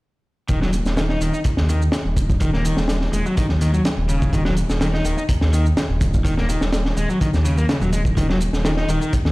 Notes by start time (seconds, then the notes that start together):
0.48 D#1 D#3, kick, closed hi-hat, shaker
0.62 F#3, snare
0.73 closed hi-hat, shaker
0.85 D#1, snare, shaker
0.97 D#3, snare, closed hi-hat, shaker
1.09 D#4, snare
1.21 D#1 D#3, closed hi-hat, shaker
1.34 D#4, shaker
1.44 D#2, kick, closed hi-hat, shaker
1.57 D#2, snare
1.69 D#3, closed hi-hat, shaker
1.82 shaker
1.92 snare, closed hi-hat, shaker
2.05 D#1
2.17 kick, closed hi-hat, shaker
2.30 kick, shaker
2.40 D#1 D#3, kick, closed hi-hat, shaker
2.53 A#3, snare
2.65 D#3, closed hi-hat, shaker
2.77 D#1, snare, shaker
2.88 snare, closed hi-hat, shaker
3.01 snare
3.13 D#1 G#3, closed hi-hat, shaker
3.26 F#3, shaker
3.37 D#3, kick, closed hi-hat, shaker
3.49 D#2, snare
3.61 D#3, closed hi-hat, shaker
3.74 F#3, shaker
3.85 snare, closed hi-hat, shaker
3.98 D#1
4.09 C#3, closed hi-hat, shaker
4.22 kick, shaker
4.33 D#1 D#3, kick, closed hi-hat, shaker
4.45 F#3, snare
4.56 closed hi-hat, shaker
4.70 D#1, snare, shaker
4.81 D#3, snare, closed hi-hat, shaker
4.93 D#4, snare
5.05 D#1 D#3, closed hi-hat, shaker
5.18 D#4, shaker
5.29 D#2, kick, closed hi-hat, shaker
5.41 D#2, snare
5.53 D#3, closed hi-hat, shaker
5.66 shaker
5.77 snare, closed hi-hat, shaker
5.90 D#1
6.01 kick, closed hi-hat, shaker
6.14 kick, shaker
6.25 D#1 D#3, kick, closed hi-hat, shaker
6.37 A#3, snare
6.49 D#3, closed hi-hat, shaker
6.61 D#1, snare, shaker
6.73 snare, closed hi-hat, shaker
6.85 snare
6.97 D#1 G#3, closed hi-hat, shaker
7.09 F#3, shaker
7.21 D#3, kick, closed hi-hat, shaker
7.33 D#2, snare, shaker
7.45 C#3, closed hi-hat, shaker
7.58 A#3, shaker
7.69 C#3, snare, closed hi-hat, shaker
7.81 D#1 F#3, shaker
7.92 G#3, closed hi-hat, shaker
8.05 kick, shaker
8.17 D#1 D#3, kick, closed hi-hat, shaker
8.29 F#3, snare
8.40 closed hi-hat, shaker
8.53 D#1, snare, shaker
8.65 D#3, snare, closed hi-hat, shaker
8.77 D#4, snare
8.88 D#1 D#3, closed hi-hat, shaker
9.01 D#3, shaker
9.13 D#2, kick, closed hi-hat, shaker
9.25 D#2, snare